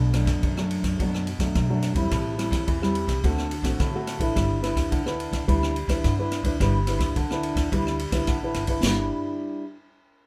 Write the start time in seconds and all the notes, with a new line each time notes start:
Already playing: B1 B2 D4
0.14 F#3 A3 D4, cross-stick, ride
0.26 F#2, kick, cross-stick, ride
0.43 F#2, kick, ride
0.57 F#3 A3 D4, cross-stick
0.71 ride
0.82 F#2, kick, cross-stick, ride
0.99 F#2 B2 F#3 A3 D4, kick, ride
1.14 cross-stick
1.27 ride
1.38 F#2 F#3 A3 D4, kick, cross-stick, ride
1.55 F#2 B2, kick, cross-stick, ride
1.70 F#3 A3 D4
1.83 cross-stick, ride
1.94 E2 G3 C4 E4, kick, ride
2.11 A1 A2, kick, cross-stick, ride
2.37 G3 C4 E4, cross-stick, ride
2.51 E2, kick, cross-stick, ride
2.66 E2 E3, kick, ride
2.82 G3 C4 E4, cross-stick
2.95 ride
3.07 C2, kick, cross-stick, ride
3.24 D2 D3 A3 C4 F#4, kick, ride
3.38 cross-stick
3.51 ride
3.62 A1 A3 C4 F#4, kick, cross-stick, ride
3.80 A2 D3, kick, cross-stick, ride
3.94 A3 C4 F#4
4.07 cross-stick, ride
4.19 A1 D4 E4 B4, kick, ride
4.35 G1 G3, kick, cross-stick, ride
4.62 D4 E4 B4, cross-stick, ride
4.75 D2, kick, cross-stick, ride
4.91 D2 D3, kick, ride
5.05 D4 E4 B4, cross-stick
5.20 ride
5.31 D2, kick, cross-stick, ride
5.47 D2 G3 D4 E4 B4, kick, ride
5.63 cross-stick
5.76 ride
5.87 D2 D4 E4 B4, kick, cross-stick, ride
6.04 G2 D3, kick, cross-stick, ride
6.19 D4 E4 B4
6.32 cross-stick, ride
6.43 D2 D4 E4 B4, kick, ride
6.60 G1 G3 D4 E4 B4, kick, cross-stick, ride
6.87 D4 E4 B4, cross-stick, ride
6.99 D2, kick, cross-stick, ride
7.16 D2 D3, kick, ride
7.31 D4 E4 B4, cross-stick
7.43 ride
7.55 D2, kick, cross-stick, ride
7.72 D2 G3 D4 E4 B4, kick, ride
7.87 cross-stick
7.99 ride
8.11 D2 D4 E4 B4, kick, cross-stick, ride
8.27 A1 D3, kick, cross-stick, ride
8.43 D4 E4 B4
8.54 G1, cross-stick, ride
8.67 D4 E4 B4, kick, ride
8.83 G1 G3 D4 E4 B4, snare, crash